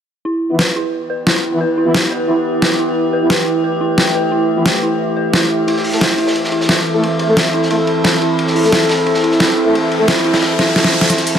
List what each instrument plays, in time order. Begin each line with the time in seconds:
0.25 synth drone E3 B3 G4, synth bell E4, ambient pad E4
0.50 brass ensemble E3 B3 E4, ambient pad B4
0.59 synth bell B4, snare
0.76 synth bell E4
0.98 ambient pad E5
1.10 synth bell B4
1.27 synth bell E4, snare
1.52 brass ensemble E3 B3 E4
1.61 synth bell B4
1.78 synth bell E4
1.86 brass ensemble E3 B3 E4
1.94 snare
2.11 synth bell B4
2.28 brass ensemble E3 B3 E4, synth bell E4
2.62 synth bell B4, snare
2.79 synth bell E4
2.96 synth drone A3
3.13 synth bell B4
3.22 brass ensemble E3 B3 E4
3.30 synth bell E4, snare
3.64 synth bell B4
3.81 synth bell E4
3.98 snare
4.15 synth bell B4
4.32 synth bell E4
4.57 brass ensemble E3 B3 E4
4.66 synth bell B4, snare
4.83 synth bell E4
5.16 synth bell B4
5.33 synth bell E4, snare
5.67 synth drone C4 A4, synth bell E4, ambient pad A4, ride
5.77 snare
5.84 open hi-hat
5.92 brass ensemble A3 E4 A4, snare
6.01 synth bell E4, snare, ride
6.18 synth bell E4, ride
6.27 ambient pad B5, snare
6.35 ride
6.44 snare
6.52 synth bell E4, ride
6.61 snare
6.69 synth bell E4, snare, ride
6.86 ride
6.94 brass ensemble A3 E4 A4
7.03 synth bell E4, ride
7.19 synth bell E4, ride
7.28 brass ensemble A3 E4 A4
7.37 snare, ride
7.45 ride
7.53 synth bell E4, ride
7.63 snare
7.70 brass ensemble A3 E4 A4, synth bell E4, ride
7.87 ride
8.04 synth bell E4, snare, ride
8.22 synth bell E4, ride
8.39 ride, riser
8.47 snare
8.55 synth bell E4, open hi-hat
8.64 brass ensemble A3 E4 A4, snare
8.72 synth bell E4, snare, ride
8.89 snare, ride
9.06 synth bell E4, ride
9.14 snare
9.23 synth bell E4, ride
9.31 snare
9.40 snare, ride
9.57 synth bell E4
9.66 brass ensemble A3 E4 A4
9.74 synth bell E4, ride
9.91 ride
10.00 brass ensemble A3 E4 A4
10.08 synth bell E4, snare, ride
10.17 ride
10.24 synth bell E4, ride
10.34 snare, ride
10.42 snare, ride
10.59 synth bell E4, snare, ride
10.68 snare
10.76 synth bell E4, snare, open hi-hat
10.84 snare
10.93 ride
11.01 snare
11.10 synth bell E4, ambient pad E4, snare, closed hi-hat, ride, riser
11.18 snare, closed hi-hat
11.27 closed hi-hat, open hi-hat
11.35 brass ensemble E3 B3 E4, snare